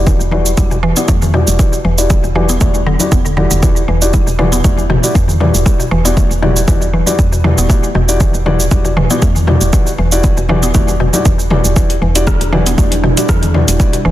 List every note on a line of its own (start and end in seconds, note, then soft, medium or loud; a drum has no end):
0.00 0.17 E1 loud
0.00 0.18 E4 medium
0.00 0.18 F#4 medium
0.00 0.18 G4 medium
0.00 0.18 D5 medium
0.07 0.20 E3 medium
0.07 kick loud
0.07 muted conga soft
0.07 low conga medium
0.07 cabasa medium
0.20 0.55 E1 medium
0.20 cabasa soft
0.31 0.45 E3 medium
0.31 0.48 E4 medium
0.31 0.48 F#4 medium
0.31 0.48 G4 medium
0.31 0.48 D5 medium
0.31 high conga loud
0.46 muted conga soft
0.46 cabasa medium
0.57 0.93 E1 loud
0.57 0.65 G3 medium
0.57 0.73 E4 medium
0.57 0.73 F#4 medium
0.57 0.73 G4 medium
0.57 0.73 D5 medium
0.57 kick loud
0.57 high conga medium
0.57 cabasa medium
0.71 0.82 B2 medium
0.71 muted conga soft
0.71 cabasa soft
0.83 0.95 E3 loud
0.96 1.03 B3 medium
0.96 1.11 E4 medium
0.96 1.11 F#4 medium
0.96 1.11 G4 medium
0.96 1.11 D5 medium
0.96 muted conga soft
0.96 cabasa medium
1.08 1.44 E2 loud
1.08 1.21 A3 medium
1.08 kick loud
1.08 high conga loud
1.08 cabasa medium
1.22 low conga medium
1.22 cabasa soft
1.34 1.41 B2 loud
1.34 1.57 E4 medium
1.34 1.57 F#4 medium
1.34 1.57 G4 medium
1.34 1.57 D5 medium
1.34 muted conga medium
1.34 high conga medium
1.47 1.58 E1 loud
1.47 cabasa medium
1.59 1.72 E3 medium
1.59 1.75 E4 medium
1.59 1.75 F#4 medium
1.59 1.75 G4 medium
1.59 kick loud
1.59 muted conga soft
1.59 cabasa medium
1.73 cabasa soft
1.84 2.20 E1 medium
1.84 1.98 E3 medium
1.84 muted conga soft
1.98 2.22 E4 medium
1.98 2.22 F#4 medium
1.98 2.22 G4 medium
1.98 2.22 D5 medium
1.98 cabasa medium
2.10 2.18 G3 medium
2.10 kick loud
2.10 muted conga soft
2.10 low conga medium
2.10 cabasa medium
2.24 2.58 E1 medium
2.24 2.35 B2 medium
2.24 cabasa soft
2.35 2.48 E3 loud
2.35 2.51 E4 medium
2.35 2.51 F#4 medium
2.35 2.51 G4 medium
2.35 2.51 D5 medium
2.35 high conga medium
2.49 2.56 B3 medium
2.49 muted conga soft
2.49 cabasa medium
2.60 2.97 E1 medium
2.60 2.73 A3 medium
2.60 2.77 E4 medium
2.60 2.77 F#4 medium
2.60 2.77 G4 medium
2.60 2.77 D5 medium
2.60 kick loud
2.60 high conga medium
2.60 low conga medium
2.60 cabasa medium
2.74 muted conga soft
2.74 cabasa soft
2.86 2.94 D3 loud
2.86 high conga medium
2.99 3.14 E4 medium
2.99 3.14 F#4 medium
2.99 3.14 G4 medium
2.99 3.14 D5 medium
2.99 muted conga soft
2.99 high conga medium
2.99 cabasa medium
3.12 3.48 E1 medium
3.12 3.19 B3 medium
3.12 kick loud
3.12 cabasa medium
3.25 3.36 D3 medium
3.25 cabasa soft
3.37 3.45 D3 loud
3.37 3.60 E4 medium
3.37 3.60 F#4 medium
3.37 3.60 G4 medium
3.37 3.60 D5 medium
3.37 muted conga soft
3.37 high conga medium
3.51 3.85 E1 medium
3.51 3.62 D3 medium
3.51 cabasa medium
3.63 3.76 E3 medium
3.63 3.78 E4 medium
3.63 3.78 F#4 medium
3.63 3.78 G4 medium
3.63 3.78 D5 medium
3.63 kick loud
3.63 muted conga soft
3.63 cabasa medium
3.76 cabasa soft
3.88 4.24 E1 medium
3.88 4.01 E3 medium
3.88 muted conga soft
4.02 4.25 E4 medium
4.02 4.25 F#4 medium
4.02 4.25 G4 medium
4.02 4.25 D5 medium
4.02 cabasa medium
4.13 4.21 G3 medium
4.13 kick loud
4.13 muted conga soft
4.13 low conga medium
4.13 cabasa medium
4.27 4.62 E1 medium
4.27 4.38 B2 medium
4.27 cabasa soft
4.39 4.51 E3 medium
4.39 4.54 E4 medium
4.39 4.54 F#4 medium
4.39 4.54 G4 medium
4.39 4.54 D5 medium
4.39 mid tom medium
4.39 high conga loud
4.52 4.59 B3 medium
4.52 muted conga soft
4.52 cabasa medium
4.64 5.00 E1 medium
4.64 4.77 A3 medium
4.64 4.80 E4 medium
4.64 4.80 F#4 medium
4.64 4.80 G4 medium
4.64 4.80 D5 medium
4.64 kick loud
4.64 high conga medium
4.64 cabasa medium
4.77 muted conga soft
4.77 cabasa soft
4.90 4.97 B2 loud
4.90 mid tom medium
5.03 5.17 E4 medium
5.03 5.17 F#4 medium
5.03 5.17 G4 medium
5.03 5.17 D5 medium
5.03 muted conga soft
5.03 cabasa medium
5.15 5.51 E2 loud
5.15 5.28 E3 medium
5.15 kick loud
5.15 high conga medium
5.15 cabasa medium
5.28 low conga medium
5.28 cabasa soft
5.40 5.54 E3 medium
5.40 5.63 E4 medium
5.40 5.63 F#4 medium
5.40 5.63 G4 medium
5.40 5.63 D5 medium
5.40 mid tom medium
5.40 muted conga soft
5.40 high conga medium
5.54 5.64 E1 loud
5.54 cabasa medium
5.66 5.73 G3 medium
5.66 5.82 E4 medium
5.66 5.82 F#4 medium
5.66 5.82 G4 medium
5.66 5.82 D5 medium
5.66 kick loud
5.66 muted conga soft
5.66 cabasa medium
5.80 5.90 B2 medium
5.80 cabasa soft
5.91 6.27 E1 medium
5.91 6.04 E3 medium
5.91 muted conga soft
6.05 6.12 B3 medium
6.05 6.29 E4 medium
6.05 6.29 F#4 medium
6.05 6.29 G4 medium
6.05 6.29 D5 medium
6.05 cabasa medium
6.17 6.29 A3 medium
6.17 kick loud
6.17 muted conga soft
6.17 low conga medium
6.17 cabasa medium
6.30 6.65 E1 medium
6.30 cabasa soft
6.42 6.50 B2 loud
6.42 6.58 E4 medium
6.42 6.58 F#4 medium
6.42 6.58 G4 medium
6.42 6.58 D5 loud
6.42 mid tom medium
6.42 high conga medium
6.56 muted conga soft
6.56 cabasa medium
6.68 7.04 E1 medium
6.68 6.81 E3 medium
6.68 6.83 E4 medium
6.68 6.83 F#4 medium
6.68 6.83 G4 medium
6.68 6.83 D5 medium
6.68 kick loud
6.68 high conga medium
6.68 low conga medium
6.68 cabasa medium
6.82 muted conga soft
6.82 cabasa soft
6.93 7.06 E3 medium
6.93 high conga medium
7.06 7.21 E4 medium
7.06 7.21 F#4 medium
7.06 7.21 G4 medium
7.06 7.21 D5 medium
7.06 muted conga soft
7.06 high conga medium
7.06 cabasa medium
7.19 7.54 E2 loud
7.19 7.26 G3 medium
7.19 kick loud
7.19 cabasa medium
7.32 7.43 B2 medium
7.32 cabasa soft
7.44 7.57 E3 medium
7.44 7.67 E4 medium
7.44 7.67 F#4 medium
7.44 7.67 G4 medium
7.44 7.67 D5 medium
7.44 mid tom medium
7.44 muted conga soft
7.44 high conga medium
7.58 7.68 E1 loud
7.58 7.64 B3 medium
7.58 cabasa medium
7.69 7.82 A3 medium
7.69 7.85 E4 medium
7.69 7.85 F#4 medium
7.69 7.85 G4 medium
7.69 7.85 D5 medium
7.69 kick loud
7.69 muted conga soft
7.69 cabasa medium
7.83 cabasa soft
7.95 8.31 E1 medium
7.95 8.03 B2 medium
7.95 muted conga soft
8.09 8.32 E4 medium
8.09 8.32 F#4 medium
8.09 8.32 G4 medium
8.09 8.32 D5 medium
8.09 cabasa medium
8.20 8.33 E3 medium
8.20 kick loud
8.20 muted conga medium
8.20 low conga medium
8.20 cabasa medium
8.34 8.68 E1 medium
8.34 cabasa soft
8.46 8.59 E3 medium
8.46 8.61 E4 medium
8.46 8.61 F#4 medium
8.46 8.61 G4 medium
8.46 8.61 D5 medium
8.46 mid tom medium
8.46 high conga loud
8.60 muted conga soft
8.60 cabasa medium
8.71 9.07 E1 loud
8.71 8.79 G3 medium
8.71 8.87 E4 medium
8.71 8.87 F#4 medium
8.71 8.87 G4 medium
8.71 8.87 D5 medium
8.71 kick loud
8.71 high conga medium
8.71 cabasa medium
8.84 8.96 B2 medium
8.84 muted conga soft
8.84 cabasa soft
8.97 9.09 E3 loud
8.97 mid tom medium
9.10 9.17 B3 medium
9.10 9.24 E4 medium
9.10 9.24 F#4 medium
9.10 9.24 G4 medium
9.10 9.24 D5 medium
9.10 muted conga soft
9.10 cabasa medium
9.22 9.58 E2 loud
9.22 9.34 A3 medium
9.22 kick loud
9.22 high conga loud
9.22 cabasa medium
9.36 low conga medium
9.36 cabasa soft
9.47 9.55 B2 loud
9.47 9.70 E4 medium
9.47 9.70 F#4 medium
9.47 9.70 G4 medium
9.47 9.70 D5 medium
9.47 mid tom medium
9.47 muted conga soft
9.47 high conga medium
9.61 9.71 E1 loud
9.61 cabasa medium
9.73 9.86 E3 medium
9.73 9.88 E4 medium
9.73 9.88 F#4 medium
9.73 9.88 G4 medium
9.73 9.88 D5 medium
9.73 kick loud
9.73 muted conga soft
9.73 cabasa medium
9.87 cabasa soft
9.98 10.34 E1 medium
9.98 10.11 E3 medium
9.98 muted conga soft
10.12 10.35 E4 medium
10.12 10.35 F#4 medium
10.12 10.35 G4 medium
10.12 10.35 D5 loud
10.12 cabasa medium
10.23 10.31 G3 medium
10.23 kick loud
10.23 muted conga medium
10.23 low conga medium
10.23 cabasa medium
10.37 10.72 E1 medium
10.37 10.48 B2 medium
10.37 cabasa soft
10.49 10.62 E3 loud
10.49 10.65 E4 medium
10.49 10.65 F#4 medium
10.49 10.65 G4 medium
10.49 10.65 D5 loud
10.49 mid tom medium
10.49 high conga medium
10.62 10.69 B3 medium
10.62 muted conga soft
10.62 cabasa medium
10.74 11.10 E1 medium
10.74 10.87 A3 medium
10.74 10.90 E4 medium
10.74 10.90 F#4 medium
10.74 10.90 G4 medium
10.74 10.90 D5 medium
10.74 kick loud
10.74 high conga medium
10.74 low conga medium
10.74 cabasa medium
10.87 muted conga medium
10.87 cabasa soft
11.00 11.07 B2 loud
11.00 high conga medium
11.13 11.28 E4 medium
11.13 11.28 F#4 medium
11.13 11.28 G4 medium
11.13 11.28 D5 medium
11.13 muted conga soft
11.13 high conga medium
11.13 cabasa medium
11.25 11.61 E1 loud
11.25 11.38 E3 medium
11.25 kick loud
11.25 cabasa medium
11.39 cabasa soft
11.50 11.64 E3 medium
11.50 11.74 E4 medium
11.50 11.74 F#4 medium
11.50 11.74 G4 medium
11.50 11.74 D5 medium
11.50 mid tom medium
11.50 muted conga medium
11.50 high conga medium
11.64 11.99 E1 medium
11.64 cabasa medium
11.76 11.89 E3 medium
11.76 14.11 G3 medium
11.76 14.11 D4 medium
11.76 14.11 E4 medium
11.76 11.92 E4 medium
11.76 11.92 F#4 medium
11.76 11.92 G4 medium
11.76 kick loud
11.76 muted conga medium
11.76 cabasa medium
11.90 closed hi-hat soft
11.90 cabasa soft
12.02 12.37 E1 loud
12.02 12.15 E3 medium
12.02 muted conga soft
12.15 12.39 E4 medium
12.15 12.39 F#4 medium
12.15 12.39 G4 medium
12.15 12.39 D5 loud
12.15 closed hi-hat medium
12.15 cabasa medium
12.27 12.35 G3 medium
12.27 kick loud
12.27 cross-stick loud
12.27 muted conga medium
12.27 low conga medium
12.27 cabasa medium
12.41 12.75 E1 medium
12.41 12.51 B2 medium
12.41 closed hi-hat soft
12.41 cabasa soft
12.52 12.65 E3 loud
12.52 12.68 E4 medium
12.52 12.68 F#4 medium
12.52 12.68 G4 medium
12.52 12.68 D5 medium
12.52 mid tom medium
12.52 high conga medium
12.66 12.73 B3 medium
12.66 closed hi-hat medium
12.66 muted conga soft
12.66 cabasa medium
12.78 13.14 E1 loud
12.78 12.90 A3 medium
12.78 12.94 E4 medium
12.78 12.94 F#4 medium
12.78 12.94 G4 medium
12.78 12.94 D5 medium
12.78 kick loud
12.78 high conga medium
12.78 cabasa medium
12.92 closed hi-hat soft
12.92 muted conga soft
12.92 cabasa soft
13.04 13.11 B2 loud
13.04 mid tom medium
13.17 13.31 E4 medium
13.17 13.31 F#4 medium
13.17 13.31 G4 medium
13.17 13.31 D5 medium
13.17 closed hi-hat medium
13.17 muted conga soft
13.17 cabasa medium
13.29 13.65 E2 loud
13.29 13.42 E3 medium
13.29 kick loud
13.29 cross-stick loud
13.29 high conga loud
13.29 cabasa medium
13.43 closed hi-hat soft
13.43 low conga medium
13.43 cabasa soft
13.54 13.67 E3 medium
13.54 13.77 E4 medium
13.54 13.77 F#4 medium
13.54 13.77 G4 medium
13.54 13.77 D5 medium
13.54 mid tom medium
13.54 muted conga medium
13.54 high conga medium
13.68 13.78 E1 loud
13.68 closed hi-hat medium
13.68 cabasa medium
13.80 13.87 G3 medium
13.80 13.95 E4 medium
13.80 13.95 F#4 medium
13.80 13.95 G4 medium
13.80 13.95 D5 medium
13.80 kick loud
13.80 muted conga soft
13.80 cabasa medium
13.93 14.04 B2 medium
13.93 closed hi-hat soft
13.93 cabasa soft
14.05 14.11 E1 loud
14.05 14.11 E3 loud
14.05 muted conga soft